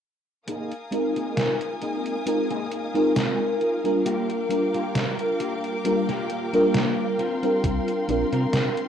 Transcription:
0.47 0.71 A#3 loud
0.47 0.72 D#4 medium
0.47 0.72 G#4 loud
0.47 8.88 A#4 medium
0.47 8.88 F5 medium
0.47 4.02 G#5 medium
0.47 4.02 D#6 medium
0.47 closed hi-hat medium
0.72 closed hi-hat soft
0.91 2.21 G#3 medium
0.91 2.21 C4 medium
0.91 2.22 D#4 medium
0.91 2.22 F4 medium
0.91 2.22 A#4 medium
0.91 muted clean electric guitar stroke soft
0.91 closed hi-hat medium
1.16 1.37 A#3 medium
1.16 1.37 D#4 medium
1.16 1.37 G#4 medium
1.16 closed hi-hat soft
1.37 snare loud
1.37 closed hi-hat medium
1.61 muted clean electric guitar stroke soft
1.61 closed hi-hat soft
1.82 2.16 A#3 medium
1.82 2.16 D#4 medium
1.82 2.17 G#4 medium
1.82 closed hi-hat medium
2.06 closed hi-hat soft
2.26 2.48 G#3 medium
2.26 2.48 C4 medium
2.26 2.48 D#4 medium
2.26 2.48 F4 medium
2.26 2.49 A#4 medium
2.26 closed hi-hat medium
2.50 2.95 A#3 loud
2.50 2.95 D#4 loud
2.50 2.96 G#4 loud
2.50 closed hi-hat soft
2.72 closed hi-hat medium
2.94 3.79 G#3 medium
2.94 3.79 C4 medium
2.94 3.79 D#4 medium
2.94 3.79 F4 medium
2.94 3.79 A#4 loud
2.94 closed hi-hat soft
3.16 snare loud
3.16 closed hi-hat medium
3.40 muted clean electric guitar stroke medium
3.61 muted clean electric guitar stroke soft
3.61 closed hi-hat soft
3.84 4.45 G3 medium
3.84 4.45 A#3 medium
3.84 4.46 D4 medium
3.84 4.46 F4 medium
3.84 4.46 A#4 medium
3.84 closed hi-hat soft
4.05 4.30 A#3 loud
4.05 4.30 F4 loud
4.05 4.30 G4 loud
4.05 8.88 G5 medium
4.05 7.16 D6 medium
4.05 closed hi-hat medium
4.30 closed hi-hat soft
4.49 5.79 G3 medium
4.49 5.80 A#3 medium
4.49 5.80 D4 medium
4.49 5.80 F4 medium
4.49 5.81 A#4 medium
4.49 muted clean electric guitar stroke soft
4.49 closed hi-hat medium
4.74 4.95 A#3 medium
4.74 4.95 F4 medium
4.74 4.95 G4 medium
4.74 closed hi-hat soft
4.95 snare loud
4.95 closed hi-hat medium
5.19 muted clean electric guitar stroke soft
5.19 closed hi-hat soft
5.39 5.74 A#3 medium
5.39 5.74 F4 medium
5.39 5.75 G4 medium
5.39 closed hi-hat medium
5.64 closed hi-hat soft
5.84 6.06 G3 medium
5.84 6.06 A#3 medium
5.84 6.07 D4 medium
5.84 6.07 F4 medium
5.84 6.07 A#4 medium
5.84 closed hi-hat medium
6.08 6.53 A#3 loud
6.08 6.53 F4 loud
6.08 6.54 G4 loud
6.08 snare soft
6.08 closed hi-hat soft
6.30 closed hi-hat medium
6.53 7.16 G3 medium
6.53 7.17 A#3 medium
6.53 7.17 D4 medium
6.53 7.17 F4 medium
6.53 7.17 A#4 loud
6.53 closed hi-hat soft
6.74 snare loud
6.74 closed hi-hat medium
6.98 muted clean electric guitar stroke medium
7.19 7.92 C4 medium
7.19 7.92 F4 medium
7.19 7.92 A#4 medium
7.19 8.88 C6 medium
7.19 closed hi-hat soft
7.43 8.04 G3 medium
7.43 8.04 C4 medium
7.43 8.04 D4 medium
7.43 8.04 F4 medium
7.43 8.04 A#4 medium
7.43 closed hi-hat soft
7.64 7.80 C2 loud
7.64 kick loud
7.64 closed hi-hat medium
7.88 closed hi-hat soft
8.08 8.25 A#1 loud
8.08 8.88 G3 medium
8.08 8.88 C4 medium
8.08 8.88 D4 medium
8.08 8.88 F4 medium
8.08 8.88 A#4 medium
8.08 muted clean electric guitar stroke soft
8.08 closed hi-hat medium
8.32 8.47 C3 loud
8.32 8.53 C4 medium
8.32 8.54 F4 medium
8.32 8.54 A#4 medium
8.32 closed hi-hat soft
8.53 8.69 C3 medium
8.53 snare loud
8.53 closed hi-hat medium
8.77 muted clean electric guitar stroke soft
8.77 closed hi-hat soft

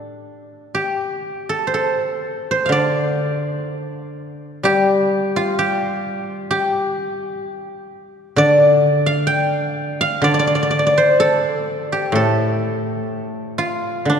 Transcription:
0.00 1.57 D4 medium
0.00 0.19 G4 medium
0.00 0.73 A4 medium
0.75 3.10 G4 medium
1.49 1.74 A4 medium
1.67 2.51 C5 medium
1.74 3.93 A4 medium
2.51 4.49 C5 medium
2.66 5.57 D3 medium
2.66 4.32 F5 medium
2.72 4.57 D5 medium
4.63 7.44 G3 medium
4.63 5.58 G4 loud
5.36 7.89 F4 medium
5.59 6.50 G4 medium
6.51 8.86 G4 medium
8.36 10.20 D3 medium
8.36 10.23 D5 loud
9.06 9.71 F5 medium
9.27 9.71 G5 medium
9.71 10.01 F5 medium
10.01 11.68 F5 loud
10.22 13.10 D3 medium
10.22 10.34 D5 loud
10.34 10.39 D5 medium
10.39 10.47 D5 medium
10.47 10.55 D5 medium
10.55 10.62 D5 medium
10.63 10.70 D5 medium
10.71 10.79 D5 medium
10.79 10.86 D5 medium
10.87 12.71 D5 medium
10.98 12.96 C5 medium
11.20 12.15 A4 medium
11.92 14.20 G4 medium
12.12 14.07 A2 medium
12.12 14.20 A4 medium
13.58 14.20 F4 medium
14.05 14.20 D3 medium
14.10 14.20 D4 medium

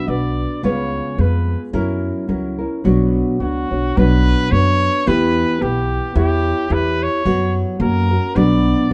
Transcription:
0.07 0.44 B1 medium
0.07 0.62 B3 medium
0.07 0.63 D4 medium
0.07 0.63 F#4 medium
0.07 0.63 B4 medium
0.07 0.63 D5 medium
0.63 0.99 C#2 medium
0.63 1.19 C#3 medium
0.63 1.17 G#3 medium
0.63 1.17 B3 medium
0.63 1.18 F4 medium
0.63 1.19 B4 medium
0.63 1.22 C#5 medium
1.18 1.54 F2 medium
1.18 1.73 G#3 medium
1.18 1.73 B3 medium
1.18 1.74 F4 medium
1.18 1.74 B4 medium
1.18 1.62 B4 medium
1.73 2.09 F#2 medium
1.73 2.27 F#3 medium
1.73 2.27 C#4 medium
1.73 2.28 E4 medium
1.73 2.28 A#4 loud
2.27 2.65 C#2 medium
2.27 2.58 F#3 medium
2.27 2.58 C#4 medium
2.27 2.58 E4 medium
2.27 2.57 A#4 medium
2.58 2.84 C#4 soft
2.58 2.84 E4 soft
2.58 2.84 A#4 medium
2.84 3.21 B1 medium
2.84 3.40 B2 medium
2.84 3.40 F#3 medium
2.84 3.40 B3 medium
2.84 3.40 D4 medium
2.84 3.40 F#4 loud
2.84 3.40 C#5 medium
3.40 3.67 C#2 medium
3.40 3.70 B3 medium
3.40 3.71 D4 medium
3.40 3.99 F#4 loud
3.40 3.71 F#4 medium
3.40 3.69 C#5 medium
3.71 3.94 B1 medium
3.71 3.95 B3 soft
3.71 3.96 D4 soft
3.71 3.96 F#4 soft
3.71 3.96 C#5 soft
3.96 4.33 B1 medium
3.96 4.52 B2 medium
3.96 4.52 F#3 medium
3.96 4.50 B3 medium
3.96 4.51 D4 medium
3.96 4.51 F#4 medium
3.96 4.52 B4 medium
3.96 4.53 B4 loud
4.51 4.87 F#2 medium
4.51 5.05 B3 medium
4.51 5.06 D4 medium
4.51 5.07 F#4 medium
4.51 5.06 B4 medium
4.51 5.09 C#5 loud
5.06 5.43 E2 medium
5.06 5.61 E3 medium
5.06 5.59 B3 medium
5.06 5.60 E4 medium
5.06 5.60 G4 medium
5.06 5.61 B4 loud
5.06 5.64 B4 loud
5.61 5.97 B1 medium
5.61 6.15 B3 medium
5.61 6.14 E4 medium
5.61 6.14 G4 medium
5.61 6.16 G4 loud
5.61 6.16 B4 medium
6.15 6.51 E2 loud
6.15 6.69 E4 medium
6.15 6.70 G4 medium
6.15 6.74 G4 loud
6.15 6.70 C#5 loud
6.15 6.71 E5 medium
6.70 7.06 E2 medium
6.70 7.25 E4 medium
6.70 7.25 G4 medium
6.70 7.04 B4 loud
6.70 7.25 C#5 medium
6.70 7.26 E5 medium
7.03 7.57 C#5 loud
7.25 7.61 F#2 medium
7.25 7.79 F#3 medium
7.25 7.80 B3 medium
7.25 7.79 F#4 medium
7.25 7.81 C#5 loud
7.79 8.16 F#2 medium
7.79 8.10 A#3 medium
7.79 8.10 C#4 medium
7.79 8.10 F#4 medium
7.79 8.08 A#4 medium
7.79 8.38 A#4 loud
8.10 8.36 C#4 soft
8.10 8.35 F#4 soft
8.10 8.36 A#4 soft
8.35 8.72 B1 medium
8.35 8.91 B2 medium
8.35 8.91 F#3 medium
8.35 8.89 B3 loud
8.35 8.90 D4 medium
8.35 8.91 F#4 medium
8.35 8.91 B4 medium
8.35 8.92 D5 loud

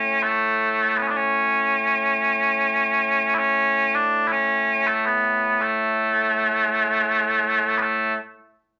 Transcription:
0.00 8.17 A2 medium
0.00 0.23 A3 medium
0.00 0.23 C#4 loud
0.23 0.97 A3 medium
0.97 1.02 B3 medium
1.02 1.07 C#4 medium
1.08 1.17 D4 medium
1.17 3.35 C#4 loud
3.35 3.95 C#4 loud
3.35 3.39 E4 loud
3.95 4.28 D4 loud
4.28 4.32 E4 loud
4.32 4.87 C#4 loud
4.87 5.06 A3 medium
5.06 5.62 B3 medium
5.62 7.78 A3 medium
7.78 8.17 A3 medium
7.78 7.82 B3 medium

